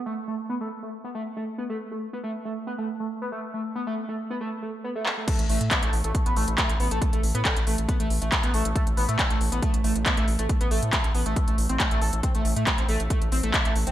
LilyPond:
<<
  \new Staff \with { instrumentName = "Analog synth lead" } { \time 4/4 \key c \major \tempo 4 = 138 a16 r16 a16 r16 b16 a16 r16 a16 r16 b16 a16 r16 a16 r16 b16 a16 | r16 a16 r16 b16 a16 r16 a16 r16 b16 a16 r16 a16 r16 b16 a16 r16 | a16 r16 b16 a16 r16 a16 r16 b16 a16 r16 a16 r16 b16 a16 r16 a16 | a16 r16 a16 r16 b16 a16 r16 a16 r16 b16 a16 r16 a16 r16 b16 a16 |
r16 a16 r16 b16 a16 r16 a16 r16 b16 a16 r16 a16 r16 b16 a16 r16 | a16 r16 b16 a16 r16 a16 r16 b16 a16 r16 a16 r16 b16 a16 r16 a16 | r16 b16 a16 r16 a16 r16 b16 a16 r16 a16 r16 c'16 a16 a16 a'16 r16 | c'16 a16 r16 a16 r16 c'16 a16 r16 a16 r16 c'16 a16 r16 a16 r16 c'16 | }
  \new Staff \with { instrumentName = "Analog synth bass" } { \clef bass \time 4/4 \key c \major r1 | r1 | r1 | r16 a,,16 a,,16 a,16 r16 a,,16 a,,16 a,,16 r16 a,,16 a,,16 a,,16 r16 a,,16 a,,16 a,,16 |
r16 a,,16 a,,16 a,16 r16 a,,16 a,,16 a,,16 r16 a,,16 a,,16 a,,16 r16 a,,16 a,,16 a,,16 | r16 a,,16 a,,16 a,16 r16 a,,16 a,,16 a,,16 r16 a,,16 a,,16 a,,16 r16 a,,16 a,,16 a,,16 | r16 a,,16 a,,16 a,16 r16 a,,16 a,,16 a,,16 r16 a,,16 a,,16 a,,16 r16 a,,16 a,,16 a,,16 | r16 a,,16 a,,16 a,16 r16 a,,16 a,,16 a,,16 r16 a,,16 a,,16 a,,16 r16 a,,16 a,,16 a,,16 | }
  \new DrumStaff \with { instrumentName = "Drums" } \drummode { \time 4/4 r4 r4 r4 r4 | r4 r4 r4 r4 | r4 r4 r4 r8 hc8 | <cymc hh bd>16 hh16 hho16 hh16 <hc hh bd>16 hh16 hho16 hh16 <hh bd>16 hh16 hho16 hh16 <hc hh bd>16 hh16 hho16 hh16 |
<hh bd>16 hh16 hho16 hh16 <hc hh bd>16 hh16 hho16 hh16 <hh bd>16 hh16 hho16 hh16 <hc hh bd>16 hh16 hho16 hh16 | <hh bd>16 hh16 hho16 hh16 <hc hh bd>16 hh16 hho16 hh16 <hh bd>16 hh16 hho16 hh16 <hc hh bd>16 hh16 hho16 hh16 | <hh bd>16 hh16 hho16 hh16 <hc hh bd>16 hh16 hho16 hh16 <hh bd>16 hh16 hho16 hh16 <hc hh bd>16 hh16 hho16 hh16 | <hh bd>16 hh16 hho16 hh16 <hc hh bd>16 hh16 hho16 hh16 <hh bd>16 hh16 hho16 hh16 <hc hh bd>16 hh16 hho16 hh16 | }
>>